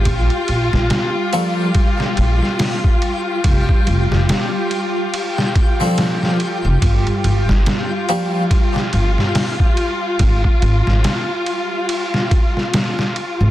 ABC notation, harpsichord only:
X:1
M:4/4
L:1/16
Q:"Swing 16ths" 1/4=71
K:F
V:1 name="Harpsichord"
z6 [F,B,DA] z8 z | z8 z3 [F,CDA]3 z2 | z6 [F,B,DG] z8 z | z16 |]